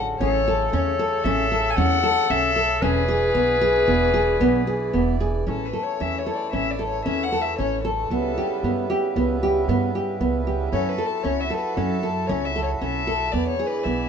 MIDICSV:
0, 0, Header, 1, 6, 480
1, 0, Start_track
1, 0, Tempo, 527704
1, 187, Time_signature, 5, 2, 24, 8
1, 6429, Tempo, 522648
1, 12877, End_track
2, 0, Start_track
2, 0, Title_t, "Violin"
2, 0, Program_c, 0, 40
2, 179, Note_on_c, 0, 73, 95
2, 626, Note_off_c, 0, 73, 0
2, 662, Note_on_c, 0, 73, 81
2, 1130, Note_on_c, 0, 76, 91
2, 1144, Note_off_c, 0, 73, 0
2, 1547, Note_on_c, 0, 80, 81
2, 1561, Note_off_c, 0, 76, 0
2, 1607, Note_on_c, 0, 78, 105
2, 1620, Note_off_c, 0, 80, 0
2, 2091, Note_on_c, 0, 76, 101
2, 2104, Note_off_c, 0, 78, 0
2, 2570, Note_on_c, 0, 68, 88
2, 2584, Note_off_c, 0, 76, 0
2, 4499, Note_off_c, 0, 68, 0
2, 4987, Note_on_c, 0, 69, 68
2, 5147, Note_on_c, 0, 71, 67
2, 5161, Note_off_c, 0, 69, 0
2, 5304, Note_on_c, 0, 73, 73
2, 5318, Note_off_c, 0, 71, 0
2, 5467, Note_on_c, 0, 76, 77
2, 5481, Note_off_c, 0, 73, 0
2, 5624, Note_on_c, 0, 73, 66
2, 5638, Note_off_c, 0, 76, 0
2, 5782, Note_on_c, 0, 74, 68
2, 5796, Note_off_c, 0, 73, 0
2, 5931, Note_off_c, 0, 74, 0
2, 5936, Note_on_c, 0, 76, 77
2, 6099, Note_on_c, 0, 74, 70
2, 6113, Note_off_c, 0, 76, 0
2, 6254, Note_off_c, 0, 74, 0
2, 6259, Note_on_c, 0, 73, 76
2, 6412, Note_off_c, 0, 73, 0
2, 6416, Note_on_c, 0, 76, 84
2, 6580, Note_on_c, 0, 78, 81
2, 6594, Note_off_c, 0, 76, 0
2, 6749, Note_on_c, 0, 76, 74
2, 6763, Note_off_c, 0, 78, 0
2, 6907, Note_off_c, 0, 76, 0
2, 6913, Note_on_c, 0, 73, 76
2, 7135, Note_off_c, 0, 73, 0
2, 7143, Note_on_c, 0, 69, 74
2, 8071, Note_off_c, 0, 69, 0
2, 9789, Note_on_c, 0, 73, 89
2, 9908, Note_off_c, 0, 73, 0
2, 9908, Note_on_c, 0, 73, 55
2, 9941, Note_on_c, 0, 71, 82
2, 9955, Note_off_c, 0, 73, 0
2, 10095, Note_on_c, 0, 69, 81
2, 10109, Note_off_c, 0, 71, 0
2, 10251, Note_on_c, 0, 73, 86
2, 10264, Note_off_c, 0, 69, 0
2, 10411, Note_on_c, 0, 76, 88
2, 10425, Note_off_c, 0, 73, 0
2, 10557, Note_off_c, 0, 76, 0
2, 10562, Note_on_c, 0, 71, 68
2, 10722, Note_on_c, 0, 69, 74
2, 10736, Note_off_c, 0, 71, 0
2, 11209, Note_on_c, 0, 73, 79
2, 11223, Note_off_c, 0, 69, 0
2, 11373, Note_on_c, 0, 76, 80
2, 11387, Note_off_c, 0, 73, 0
2, 11532, Note_off_c, 0, 76, 0
2, 11537, Note_on_c, 0, 73, 67
2, 11612, Note_off_c, 0, 73, 0
2, 11691, Note_on_c, 0, 76, 81
2, 12170, Note_on_c, 0, 74, 82
2, 12183, Note_off_c, 0, 76, 0
2, 12323, Note_off_c, 0, 74, 0
2, 12329, Note_on_c, 0, 73, 76
2, 12491, Note_on_c, 0, 71, 77
2, 12505, Note_off_c, 0, 73, 0
2, 12649, Note_on_c, 0, 76, 68
2, 12663, Note_off_c, 0, 71, 0
2, 12877, Note_off_c, 0, 76, 0
2, 12877, End_track
3, 0, Start_track
3, 0, Title_t, "Clarinet"
3, 0, Program_c, 1, 71
3, 189, Note_on_c, 1, 69, 90
3, 2561, Note_on_c, 1, 71, 114
3, 2575, Note_off_c, 1, 69, 0
3, 4738, Note_off_c, 1, 71, 0
3, 12877, End_track
4, 0, Start_track
4, 0, Title_t, "Nylon-string guitar"
4, 0, Program_c, 2, 24
4, 0, Note_on_c, 2, 69, 70
4, 130, Note_off_c, 2, 69, 0
4, 188, Note_on_c, 2, 61, 79
4, 370, Note_off_c, 2, 61, 0
4, 433, Note_on_c, 2, 69, 75
4, 612, Note_off_c, 2, 69, 0
4, 665, Note_on_c, 2, 61, 73
4, 846, Note_off_c, 2, 61, 0
4, 902, Note_on_c, 2, 69, 70
4, 1083, Note_off_c, 2, 69, 0
4, 1139, Note_on_c, 2, 61, 80
4, 1320, Note_off_c, 2, 61, 0
4, 1379, Note_on_c, 2, 69, 70
4, 1560, Note_off_c, 2, 69, 0
4, 1616, Note_on_c, 2, 61, 88
4, 1798, Note_off_c, 2, 61, 0
4, 1850, Note_on_c, 2, 69, 77
4, 2034, Note_off_c, 2, 69, 0
4, 2092, Note_on_c, 2, 61, 80
4, 2274, Note_off_c, 2, 61, 0
4, 2328, Note_on_c, 2, 69, 69
4, 2512, Note_off_c, 2, 69, 0
4, 2566, Note_on_c, 2, 61, 83
4, 2751, Note_off_c, 2, 61, 0
4, 2805, Note_on_c, 2, 68, 74
4, 2991, Note_off_c, 2, 68, 0
4, 3043, Note_on_c, 2, 59, 74
4, 3231, Note_off_c, 2, 59, 0
4, 3287, Note_on_c, 2, 68, 77
4, 3473, Note_off_c, 2, 68, 0
4, 3524, Note_on_c, 2, 59, 73
4, 3711, Note_off_c, 2, 59, 0
4, 3763, Note_on_c, 2, 68, 70
4, 3951, Note_off_c, 2, 68, 0
4, 4008, Note_on_c, 2, 59, 86
4, 4195, Note_off_c, 2, 59, 0
4, 4249, Note_on_c, 2, 68, 61
4, 4438, Note_off_c, 2, 68, 0
4, 4488, Note_on_c, 2, 59, 69
4, 4678, Note_off_c, 2, 59, 0
4, 4733, Note_on_c, 2, 68, 65
4, 4921, Note_off_c, 2, 68, 0
4, 4971, Note_on_c, 2, 61, 65
4, 5160, Note_off_c, 2, 61, 0
4, 5215, Note_on_c, 2, 69, 61
4, 5402, Note_off_c, 2, 69, 0
4, 5458, Note_on_c, 2, 61, 67
4, 5645, Note_off_c, 2, 61, 0
4, 5697, Note_on_c, 2, 69, 66
4, 5885, Note_off_c, 2, 69, 0
4, 5939, Note_on_c, 2, 61, 69
4, 6126, Note_off_c, 2, 61, 0
4, 6175, Note_on_c, 2, 69, 57
4, 6363, Note_off_c, 2, 69, 0
4, 6418, Note_on_c, 2, 61, 72
4, 6606, Note_off_c, 2, 61, 0
4, 6662, Note_on_c, 2, 69, 65
4, 6849, Note_off_c, 2, 69, 0
4, 6903, Note_on_c, 2, 61, 65
4, 7089, Note_off_c, 2, 61, 0
4, 7143, Note_on_c, 2, 69, 65
4, 7330, Note_off_c, 2, 69, 0
4, 7387, Note_on_c, 2, 59, 68
4, 7572, Note_off_c, 2, 59, 0
4, 7630, Note_on_c, 2, 67, 67
4, 7814, Note_off_c, 2, 67, 0
4, 7874, Note_on_c, 2, 59, 63
4, 8056, Note_off_c, 2, 59, 0
4, 8109, Note_on_c, 2, 67, 67
4, 8293, Note_off_c, 2, 67, 0
4, 8352, Note_on_c, 2, 59, 70
4, 8535, Note_off_c, 2, 59, 0
4, 8597, Note_on_c, 2, 67, 68
4, 8779, Note_off_c, 2, 67, 0
4, 8836, Note_on_c, 2, 59, 79
4, 9018, Note_off_c, 2, 59, 0
4, 9076, Note_on_c, 2, 67, 65
4, 9257, Note_off_c, 2, 67, 0
4, 9311, Note_on_c, 2, 59, 66
4, 9493, Note_off_c, 2, 59, 0
4, 9552, Note_on_c, 2, 67, 61
4, 9733, Note_off_c, 2, 67, 0
4, 9790, Note_on_c, 2, 61, 73
4, 9972, Note_off_c, 2, 61, 0
4, 10022, Note_on_c, 2, 69, 72
4, 10207, Note_off_c, 2, 69, 0
4, 10265, Note_on_c, 2, 61, 68
4, 10448, Note_off_c, 2, 61, 0
4, 10501, Note_on_c, 2, 69, 64
4, 10686, Note_off_c, 2, 69, 0
4, 10747, Note_on_c, 2, 61, 73
4, 10930, Note_off_c, 2, 61, 0
4, 10986, Note_on_c, 2, 69, 65
4, 11170, Note_off_c, 2, 69, 0
4, 11227, Note_on_c, 2, 61, 78
4, 11411, Note_off_c, 2, 61, 0
4, 11468, Note_on_c, 2, 69, 70
4, 11652, Note_off_c, 2, 69, 0
4, 11706, Note_on_c, 2, 61, 63
4, 11891, Note_off_c, 2, 61, 0
4, 11943, Note_on_c, 2, 69, 67
4, 12128, Note_off_c, 2, 69, 0
4, 12180, Note_on_c, 2, 59, 65
4, 12366, Note_off_c, 2, 59, 0
4, 12422, Note_on_c, 2, 68, 71
4, 12608, Note_off_c, 2, 68, 0
4, 12661, Note_on_c, 2, 59, 67
4, 12848, Note_off_c, 2, 59, 0
4, 12877, End_track
5, 0, Start_track
5, 0, Title_t, "Harmonium"
5, 0, Program_c, 3, 20
5, 0, Note_on_c, 3, 49, 77
5, 0, Note_on_c, 3, 50, 71
5, 0, Note_on_c, 3, 54, 64
5, 150, Note_off_c, 3, 50, 0
5, 150, Note_off_c, 3, 54, 0
5, 190, Note_on_c, 3, 57, 73
5, 2530, Note_off_c, 3, 49, 0
5, 2547, Note_off_c, 3, 57, 0
5, 2575, Note_on_c, 3, 52, 83
5, 2579, Note_on_c, 3, 62, 82
5, 4958, Note_off_c, 3, 52, 0
5, 4964, Note_off_c, 3, 62, 0
5, 4971, Note_on_c, 3, 52, 60
5, 4972, Note_on_c, 3, 57, 57
5, 4975, Note_on_c, 3, 61, 66
5, 7360, Note_off_c, 3, 52, 0
5, 7361, Note_off_c, 3, 57, 0
5, 7362, Note_off_c, 3, 61, 0
5, 7376, Note_on_c, 3, 59, 55
5, 7379, Note_on_c, 3, 55, 60
5, 7379, Note_on_c, 3, 64, 73
5, 7380, Note_on_c, 3, 49, 66
5, 9756, Note_off_c, 3, 59, 0
5, 9758, Note_off_c, 3, 49, 0
5, 9758, Note_off_c, 3, 55, 0
5, 9781, Note_on_c, 3, 54, 68
5, 9783, Note_on_c, 3, 69, 78
5, 12146, Note_off_c, 3, 64, 0
5, 12161, Note_off_c, 3, 54, 0
5, 12162, Note_off_c, 3, 69, 0
5, 12192, Note_on_c, 3, 62, 63
5, 12194, Note_on_c, 3, 68, 77
5, 12197, Note_on_c, 3, 52, 67
5, 12877, Note_off_c, 3, 52, 0
5, 12877, Note_off_c, 3, 62, 0
5, 12877, Note_off_c, 3, 68, 0
5, 12877, End_track
6, 0, Start_track
6, 0, Title_t, "Upright bass"
6, 0, Program_c, 4, 32
6, 0, Note_on_c, 4, 33, 85
6, 142, Note_off_c, 4, 33, 0
6, 185, Note_on_c, 4, 33, 91
6, 614, Note_off_c, 4, 33, 0
6, 662, Note_on_c, 4, 40, 88
6, 1089, Note_off_c, 4, 40, 0
6, 1132, Note_on_c, 4, 33, 90
6, 1563, Note_off_c, 4, 33, 0
6, 1610, Note_on_c, 4, 40, 96
6, 2042, Note_off_c, 4, 40, 0
6, 2093, Note_on_c, 4, 35, 79
6, 2522, Note_off_c, 4, 35, 0
6, 2565, Note_on_c, 4, 28, 86
6, 3000, Note_off_c, 4, 28, 0
6, 3050, Note_on_c, 4, 35, 78
6, 3484, Note_off_c, 4, 35, 0
6, 3530, Note_on_c, 4, 28, 90
6, 3965, Note_off_c, 4, 28, 0
6, 4004, Note_on_c, 4, 35, 83
6, 4445, Note_off_c, 4, 35, 0
6, 4494, Note_on_c, 4, 28, 76
6, 4931, Note_off_c, 4, 28, 0
6, 4982, Note_on_c, 4, 33, 92
6, 5199, Note_off_c, 4, 33, 0
6, 5461, Note_on_c, 4, 40, 67
6, 5680, Note_off_c, 4, 40, 0
6, 5941, Note_on_c, 4, 33, 79
6, 6376, Note_off_c, 4, 33, 0
6, 6420, Note_on_c, 4, 40, 79
6, 6857, Note_off_c, 4, 40, 0
6, 6910, Note_on_c, 4, 33, 79
6, 7342, Note_off_c, 4, 33, 0
6, 7381, Note_on_c, 4, 37, 86
6, 7601, Note_off_c, 4, 37, 0
6, 7864, Note_on_c, 4, 43, 71
6, 8083, Note_off_c, 4, 43, 0
6, 8349, Note_on_c, 4, 37, 84
6, 8783, Note_off_c, 4, 37, 0
6, 8827, Note_on_c, 4, 43, 82
6, 9260, Note_off_c, 4, 43, 0
6, 9309, Note_on_c, 4, 37, 76
6, 9739, Note_off_c, 4, 37, 0
6, 9787, Note_on_c, 4, 42, 88
6, 10002, Note_off_c, 4, 42, 0
6, 10262, Note_on_c, 4, 37, 72
6, 10479, Note_off_c, 4, 37, 0
6, 10746, Note_on_c, 4, 42, 89
6, 11179, Note_off_c, 4, 42, 0
6, 11227, Note_on_c, 4, 37, 98
6, 11660, Note_off_c, 4, 37, 0
6, 11708, Note_on_c, 4, 35, 68
6, 12140, Note_off_c, 4, 35, 0
6, 12184, Note_on_c, 4, 40, 87
6, 12401, Note_off_c, 4, 40, 0
6, 12661, Note_on_c, 4, 35, 72
6, 12877, Note_off_c, 4, 35, 0
6, 12877, End_track
0, 0, End_of_file